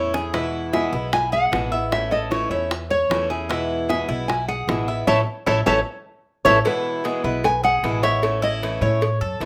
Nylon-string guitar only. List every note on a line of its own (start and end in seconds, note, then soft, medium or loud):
0.00 0.12 C#5 loud
0.34 0.75 B4 medium
0.73 1.13 E5 medium
1.13 1.31 G#5 loud
1.33 1.92 F#5 loud
1.93 2.12 E5 medium
2.12 2.52 D#5 loud
2.51 2.71 C#5 medium
2.71 2.91 B4 medium
2.91 3.27 C#5 loud
3.50 3.91 B4 medium
3.90 4.28 E5 medium
4.28 4.48 G#5 medium
4.48 5.07 F#5 medium
5.07 5.20 C#5 medium
5.07 5.20 E5 medium
5.07 5.20 A5 loud
5.47 5.60 C#5 medium
5.47 5.60 E5 medium
5.47 5.60 A5 medium
5.66 5.79 C#5 loud
5.66 5.79 E5 medium
5.66 5.79 A5 loud
6.45 6.58 C#5 loud
6.45 6.58 E5 loud
6.45 6.58 A5 loud
6.67 7.47 B4 loud
7.45 7.64 G#5 loud
7.64 8.03 F#5 loud
8.03 8.40 E5 loud
8.43 8.84 D#5 loud
8.82 9.37 C#5 medium